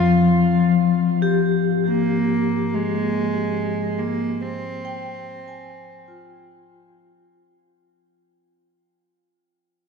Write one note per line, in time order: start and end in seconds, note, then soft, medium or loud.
0.00 1.02 F2 medium
0.00 1.40 F3 medium
0.00 7.79 F3 medium
0.00 7.80 C4 medium
0.00 0.64 F4 medium
1.06 7.69 G#2 medium
1.22 3.20 G4 soft
1.89 2.76 A#3 medium
2.74 4.00 G#3 medium
3.98 4.42 A#3 medium
4.41 6.90 C4 medium
4.85 5.64 G5 medium
5.48 7.44 G#5 medium
6.08 8.05 F4 soft